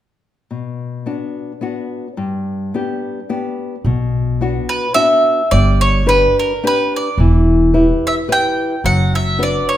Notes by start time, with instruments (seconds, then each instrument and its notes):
0.51 nylon-string guitar B2
1.06 nylon-string guitar B3 D4 F#4
1.61 nylon-string guitar B3 D4 F#4
2.17 nylon-string guitar G2
2.74 nylon-string guitar B3 D4 G4
3.29 nylon-string guitar B3 D4 G4
3.85 upright bass B1, nylon-string guitar B2
4.41 nylon-string guitar B3 D4 F#4
4.69 mandolin B4
4.94 nylon-string guitar B3 D4 F#4, mandolin E5
5.51 upright bass G1, nylon-string guitar G3, mandolin D5
5.81 mandolin C#5
6.06 nylon-string guitar D4 G4 B4, mandolin B4
6.39 mandolin A#4
6.63 nylon-string guitar D4 G4 B4, mandolin B4
6.96 mandolin D5
7.18 upright bass E1, nylon-string guitar E3
7.74 nylon-string guitar E4 G4 B4
8.07 mandolin E5
8.28 nylon-string guitar E4 G4 B4
8.32 mandolin G5
8.84 upright bass F#1, nylon-string guitar F#3, mandolin F#5
9.15 mandolin E5
9.39 nylon-string guitar D4 F#4 B4
9.43 mandolin D5
9.69 mandolin C#5